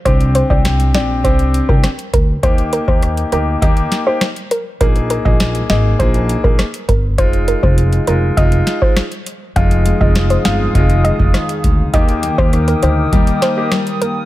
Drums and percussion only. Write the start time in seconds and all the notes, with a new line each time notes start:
0.06 kick, closed hi-hat
0.21 closed hi-hat
0.35 closed hi-hat
0.50 kick
0.65 cross-stick, snare, closed hi-hat
0.80 closed hi-hat
0.95 snare, closed hi-hat
1.24 kick, closed hi-hat
1.39 closed hi-hat
1.54 closed hi-hat
1.69 kick
1.84 cross-stick, snare, closed hi-hat
1.99 closed hi-hat
2.13 kick, closed hi-hat
2.43 kick, closed hi-hat
2.58 closed hi-hat
2.73 closed hi-hat
2.88 kick
3.03 cross-stick, closed hi-hat
3.17 closed hi-hat
3.32 closed hi-hat
3.62 kick, closed hi-hat
3.77 closed hi-hat
3.92 snare, closed hi-hat
4.21 cross-stick, snare, closed hi-hat
4.36 closed hi-hat
4.51 closed hi-hat
4.81 kick, closed hi-hat
4.96 closed hi-hat
5.10 closed hi-hat
5.25 kick
5.40 cross-stick, snare, closed hi-hat
5.55 closed hi-hat
5.70 snare, closed hi-hat
6.00 kick, closed hi-hat
6.14 closed hi-hat
6.29 closed hi-hat
6.44 kick
6.59 cross-stick, snare, closed hi-hat
6.74 closed hi-hat
6.89 kick, closed hi-hat
7.18 kick, closed hi-hat
7.33 closed hi-hat
7.48 closed hi-hat
7.63 kick
7.78 closed hi-hat
7.93 closed hi-hat
8.07 closed hi-hat
8.37 kick, closed hi-hat
8.52 closed hi-hat
8.67 snare, closed hi-hat
8.82 kick
8.97 cross-stick, snare, closed hi-hat
9.12 closed hi-hat
9.26 closed hi-hat
9.56 kick, closed hi-hat
9.71 closed hi-hat
9.86 closed hi-hat
10.01 kick
10.15 cross-stick, snare, closed hi-hat
10.30 closed hi-hat
10.45 snare, closed hi-hat
10.75 kick, closed hi-hat
10.90 closed hi-hat
11.05 closed hi-hat
11.19 kick
11.34 cross-stick, snare, closed hi-hat
11.49 closed hi-hat
11.64 kick, closed hi-hat
11.94 kick, closed hi-hat
12.09 closed hi-hat
12.23 closed hi-hat
12.38 kick
12.53 cross-stick, closed hi-hat
12.68 closed hi-hat
12.83 closed hi-hat
13.12 kick, closed hi-hat
13.27 closed hi-hat
13.42 snare, closed hi-hat
13.72 cross-stick, snare, closed hi-hat
13.87 closed hi-hat
14.02 closed hi-hat